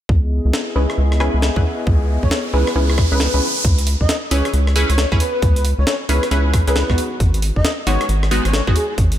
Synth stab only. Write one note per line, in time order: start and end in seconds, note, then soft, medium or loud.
0.76 0.95 C#4 medium
0.76 0.95 E4 medium
0.76 0.95 G#4 medium
0.76 0.95 B4 medium
1.20 1.34 C#4 medium
1.20 1.34 E4 medium
1.20 1.34 G#4 medium
1.20 1.34 B4 loud
1.56 1.65 C#4 medium
1.56 1.65 E4 medium
1.56 1.65 G#4 medium
1.56 1.65 B4 medium
2.54 2.67 C#4 medium
2.54 2.67 E4 medium
2.54 2.67 G#4 medium
2.54 2.67 B4 medium
2.76 3.09 C#4 medium
2.76 3.09 E4 medium
2.76 3.09 G#4 medium
2.76 3.09 B4 loud
3.12 3.31 C#4 medium
3.12 3.31 E4 medium
3.12 3.31 G#4 medium
3.12 3.31 B4 medium
3.34 3.64 C#4 medium
3.34 3.64 E4 medium
3.34 3.64 G#4 medium
3.34 3.64 B4 medium
4.31 4.50 C#4 medium
4.31 4.50 E4 medium
4.31 4.50 G#4 medium
4.31 4.50 B4 medium
4.76 4.90 C#4 medium
4.76 4.90 E4 medium
4.76 4.90 G#4 medium
4.76 4.90 B4 loud
5.12 5.20 C#4 medium
5.12 5.20 E4 medium
5.12 5.20 G#4 medium
5.12 5.20 B4 medium
6.09 6.23 C#4 medium
6.09 6.23 E4 medium
6.09 6.23 G#4 medium
6.09 6.23 B4 medium
6.31 6.64 C#4 loud
6.31 6.64 E4 medium
6.31 6.64 G#4 medium
6.31 6.64 B4 loud
6.67 6.86 C#4 medium
6.67 6.86 E4 medium
6.67 6.86 G#4 medium
6.67 6.86 B4 medium
6.90 7.85 G#3 medium
6.90 7.85 B3 medium
6.90 7.85 D#4 medium
6.90 7.85 F#4 medium
7.87 8.06 G#3 medium
7.87 8.06 B3 medium
7.87 8.06 D#4 medium
7.87 8.06 F#4 medium
8.31 8.45 G#3 medium
8.31 8.45 B3 medium
8.31 8.45 D#4 medium
8.31 8.45 F#4 loud
8.67 8.76 G#3 medium
8.67 8.76 B3 medium
8.67 8.76 D#4 medium
8.67 8.76 F#4 medium